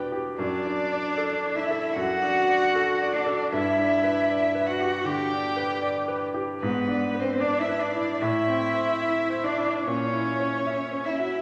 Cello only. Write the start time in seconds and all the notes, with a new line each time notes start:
0.37 D4
1.56 E4
1.95 F#4
3.14 D4
3.53 E4
4.69 F#4
5.07 G4
6.61 B3
7.20 C4
7.40 D4
7.59 E4
7.79 D4
8.20 E4
9.44 D4
9.86 C#4
11.06 E4